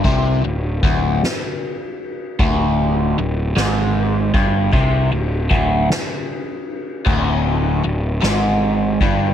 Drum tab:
CC |------|------|------|x-----|
RD |xxxxxx|xxxxxx|xxxxxx|-xxxxx|
SD |---o--|---o--|---o--|---o--|
BD |o-o---|o----o|o-o---|o----o|